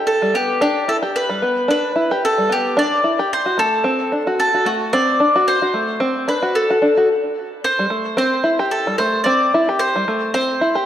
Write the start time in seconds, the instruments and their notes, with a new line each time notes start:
Already playing: five-string banjo G4
0.07 mandolin A4
0.22 five-string banjo G3
0.34 five-string banjo B3, mandolin G4
0.61 five-string banjo D4, mandolin G4
0.88 five-string banjo E4, mandolin A4
1.02 five-string banjo G4
1.16 mandolin B4
1.29 five-string banjo G3
1.42 five-string banjo B3
1.68 five-string banjo D4, mandolin B4
1.96 five-string banjo E4
2.11 five-string banjo G4
2.25 mandolin A4
2.38 five-string banjo G3
2.49 five-string banjo B3, mandolin G4
2.77 five-string banjo D4, mandolin D5
3.04 five-string banjo E4
3.19 five-string banjo G4
3.33 mandolin C5
3.46 five-string banjo F#4
3.58 five-string banjo A3, mandolin A4
3.84 five-string banjo C4
4.12 five-string banjo D4
4.27 five-string banjo F#4
4.40 mandolin A4
4.54 five-string banjo F#4
4.65 five-string banjo A3, mandolin F#4
4.93 five-string banjo C4, mandolin D5
5.20 five-string banjo D4
5.36 five-string banjo F#4
5.48 mandolin C5
5.62 five-string banjo F#4
5.74 five-string banjo A3
6.00 five-string banjo C4
6.28 five-string banjo D4, mandolin B4
6.42 five-string banjo F#4
6.55 mandolin A4
6.70 five-string banjo F#4
6.82 five-string banjo D4
6.97 five-string banjo F#4
7.64 mandolin C5
7.79 five-string banjo G3
7.90 five-string banjo A3
8.17 five-string banjo C4, mandolin C5
8.44 five-string banjo E4
8.59 five-string banjo G4
8.71 mandolin A4
8.87 five-string banjo G3
8.98 five-string banjo A3, mandolin C5
9.24 five-string banjo C4, mandolin D5
9.54 five-string banjo E4
9.69 five-string banjo G4
9.79 mandolin C5
9.96 five-string banjo G3
10.08 five-string banjo A3
10.34 five-string banjo C4, mandolin C5
10.61 five-string banjo E4
10.75 five-string banjo G4